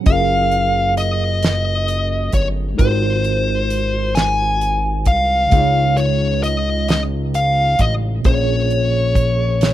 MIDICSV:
0, 0, Header, 1, 5, 480
1, 0, Start_track
1, 0, Tempo, 909091
1, 36, Time_signature, 6, 3, 24, 8
1, 5141, End_track
2, 0, Start_track
2, 0, Title_t, "Lead electric guitar"
2, 0, Program_c, 0, 29
2, 35, Note_on_c, 0, 77, 90
2, 494, Note_off_c, 0, 77, 0
2, 516, Note_on_c, 0, 75, 101
2, 1234, Note_off_c, 0, 75, 0
2, 1236, Note_on_c, 0, 73, 83
2, 1301, Note_off_c, 0, 73, 0
2, 1470, Note_on_c, 0, 72, 88
2, 2191, Note_on_c, 0, 80, 101
2, 2215, Note_off_c, 0, 72, 0
2, 2676, Note_off_c, 0, 80, 0
2, 2679, Note_on_c, 0, 77, 97
2, 3154, Note_on_c, 0, 73, 90
2, 3172, Note_off_c, 0, 77, 0
2, 3395, Note_off_c, 0, 73, 0
2, 3397, Note_on_c, 0, 75, 93
2, 3633, Note_off_c, 0, 75, 0
2, 3639, Note_on_c, 0, 75, 86
2, 3704, Note_off_c, 0, 75, 0
2, 3882, Note_on_c, 0, 77, 95
2, 4122, Note_on_c, 0, 75, 87
2, 4126, Note_off_c, 0, 77, 0
2, 4186, Note_off_c, 0, 75, 0
2, 4362, Note_on_c, 0, 73, 76
2, 5141, Note_off_c, 0, 73, 0
2, 5141, End_track
3, 0, Start_track
3, 0, Title_t, "Tine electric piano"
3, 0, Program_c, 1, 4
3, 0, Control_c, 1, 64, 127
3, 5, Note_on_c, 1, 54, 61
3, 19, Note_on_c, 1, 61, 60
3, 35, Note_on_c, 1, 65, 60
3, 42, Control_c, 1, 64, 0
3, 51, Note_on_c, 1, 68, 60
3, 65, Note_on_c, 1, 70, 73
3, 124, Control_c, 1, 64, 127
3, 1439, Note_off_c, 1, 54, 0
3, 1446, Note_off_c, 1, 61, 0
3, 1448, Note_on_c, 1, 56, 63
3, 1454, Note_off_c, 1, 65, 0
3, 1461, Note_on_c, 1, 63, 60
3, 1463, Note_off_c, 1, 68, 0
3, 1469, Note_off_c, 1, 70, 0
3, 1472, Note_on_c, 1, 65, 60
3, 1483, Control_c, 1, 64, 0
3, 1486, Note_on_c, 1, 66, 65
3, 1498, Note_on_c, 1, 70, 64
3, 1510, Note_on_c, 1, 72, 71
3, 1586, Control_c, 1, 64, 127
3, 2881, Note_off_c, 1, 56, 0
3, 2887, Note_off_c, 1, 63, 0
3, 2887, Note_on_c, 1, 49, 67
3, 2893, Note_off_c, 1, 65, 0
3, 2900, Note_off_c, 1, 66, 0
3, 2905, Note_on_c, 1, 56, 66
3, 2906, Note_off_c, 1, 70, 0
3, 2912, Note_off_c, 1, 72, 0
3, 2920, Note_on_c, 1, 63, 65
3, 2923, Control_c, 1, 64, 0
3, 2935, Note_on_c, 1, 65, 64
3, 2949, Note_on_c, 1, 73, 78
3, 3024, Control_c, 1, 64, 127
3, 4320, Note_off_c, 1, 49, 0
3, 4329, Note_off_c, 1, 56, 0
3, 4332, Note_on_c, 1, 46, 66
3, 4337, Note_off_c, 1, 63, 0
3, 4344, Note_off_c, 1, 65, 0
3, 4348, Note_on_c, 1, 58, 66
3, 4351, Note_off_c, 1, 73, 0
3, 4363, Control_c, 1, 64, 0
3, 4365, Note_on_c, 1, 61, 64
3, 4380, Note_on_c, 1, 68, 59
3, 4393, Note_on_c, 1, 73, 80
3, 4443, Control_c, 1, 64, 127
3, 5141, Note_off_c, 1, 46, 0
3, 5141, Note_off_c, 1, 58, 0
3, 5141, Note_off_c, 1, 61, 0
3, 5141, Note_off_c, 1, 68, 0
3, 5141, Note_off_c, 1, 73, 0
3, 5141, End_track
4, 0, Start_track
4, 0, Title_t, "Analog synth bass"
4, 0, Program_c, 2, 38
4, 39, Note_on_c, 2, 30, 105
4, 1216, Note_off_c, 2, 30, 0
4, 1235, Note_on_c, 2, 31, 91
4, 1454, Note_off_c, 2, 31, 0
4, 1479, Note_on_c, 2, 32, 107
4, 2679, Note_on_c, 2, 36, 88
4, 2687, Note_off_c, 2, 32, 0
4, 2896, Note_off_c, 2, 36, 0
4, 2919, Note_on_c, 2, 37, 114
4, 4096, Note_off_c, 2, 37, 0
4, 4119, Note_on_c, 2, 33, 93
4, 4336, Note_off_c, 2, 33, 0
4, 4362, Note_on_c, 2, 34, 109
4, 5141, Note_off_c, 2, 34, 0
4, 5141, End_track
5, 0, Start_track
5, 0, Title_t, "Drums"
5, 31, Note_on_c, 9, 42, 71
5, 34, Note_on_c, 9, 36, 115
5, 83, Note_off_c, 9, 42, 0
5, 87, Note_off_c, 9, 36, 0
5, 272, Note_on_c, 9, 42, 48
5, 325, Note_off_c, 9, 42, 0
5, 513, Note_on_c, 9, 42, 59
5, 566, Note_off_c, 9, 42, 0
5, 753, Note_on_c, 9, 42, 79
5, 763, Note_on_c, 9, 38, 117
5, 806, Note_off_c, 9, 42, 0
5, 815, Note_off_c, 9, 38, 0
5, 994, Note_on_c, 9, 42, 58
5, 1046, Note_off_c, 9, 42, 0
5, 1228, Note_on_c, 9, 42, 70
5, 1232, Note_on_c, 9, 36, 81
5, 1281, Note_off_c, 9, 42, 0
5, 1285, Note_off_c, 9, 36, 0
5, 1473, Note_on_c, 9, 42, 70
5, 1474, Note_on_c, 9, 36, 109
5, 1526, Note_off_c, 9, 42, 0
5, 1527, Note_off_c, 9, 36, 0
5, 1712, Note_on_c, 9, 42, 48
5, 1765, Note_off_c, 9, 42, 0
5, 1955, Note_on_c, 9, 42, 66
5, 2008, Note_off_c, 9, 42, 0
5, 2193, Note_on_c, 9, 42, 85
5, 2203, Note_on_c, 9, 38, 116
5, 2246, Note_off_c, 9, 42, 0
5, 2256, Note_off_c, 9, 38, 0
5, 2436, Note_on_c, 9, 42, 58
5, 2489, Note_off_c, 9, 42, 0
5, 2669, Note_on_c, 9, 42, 65
5, 2674, Note_on_c, 9, 36, 85
5, 2722, Note_off_c, 9, 42, 0
5, 2727, Note_off_c, 9, 36, 0
5, 2911, Note_on_c, 9, 42, 75
5, 2915, Note_on_c, 9, 36, 116
5, 2964, Note_off_c, 9, 42, 0
5, 2968, Note_off_c, 9, 36, 0
5, 3153, Note_on_c, 9, 42, 48
5, 3206, Note_off_c, 9, 42, 0
5, 3398, Note_on_c, 9, 42, 63
5, 3451, Note_off_c, 9, 42, 0
5, 3635, Note_on_c, 9, 42, 87
5, 3645, Note_on_c, 9, 38, 116
5, 3688, Note_off_c, 9, 42, 0
5, 3698, Note_off_c, 9, 38, 0
5, 3877, Note_on_c, 9, 42, 61
5, 3930, Note_off_c, 9, 42, 0
5, 4112, Note_on_c, 9, 42, 69
5, 4115, Note_on_c, 9, 36, 81
5, 4164, Note_off_c, 9, 42, 0
5, 4168, Note_off_c, 9, 36, 0
5, 4353, Note_on_c, 9, 42, 72
5, 4357, Note_on_c, 9, 36, 107
5, 4406, Note_off_c, 9, 42, 0
5, 4409, Note_off_c, 9, 36, 0
5, 4596, Note_on_c, 9, 42, 46
5, 4649, Note_off_c, 9, 42, 0
5, 4833, Note_on_c, 9, 36, 97
5, 4837, Note_on_c, 9, 42, 62
5, 4886, Note_off_c, 9, 36, 0
5, 4890, Note_off_c, 9, 42, 0
5, 5075, Note_on_c, 9, 42, 86
5, 5084, Note_on_c, 9, 38, 111
5, 5127, Note_off_c, 9, 42, 0
5, 5137, Note_off_c, 9, 38, 0
5, 5141, End_track
0, 0, End_of_file